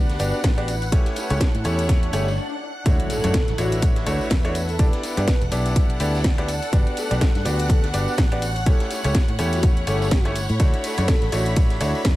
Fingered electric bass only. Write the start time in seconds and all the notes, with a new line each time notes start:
Already playing: D2
0.20 G1
0.44 A1
1.30 C#2
1.54 A2
1.65 E2
2.13 G1
2.86 D2
3.24 F#2
3.48 A1
3.58 A1
4.07 D2
4.31 E2
5.17 G2
5.42 E1
5.52 B1
6.00 D2
6.73 G1
7.11 B1
7.35 G2
7.46 D2
7.94 G1
8.18 A1
9.05 C#2
9.29 A2
9.39 E2
9.87 G1
10.50 A2
10.98 F#2
11.22 A1
11.32 A1
11.81 D2
12.05 E2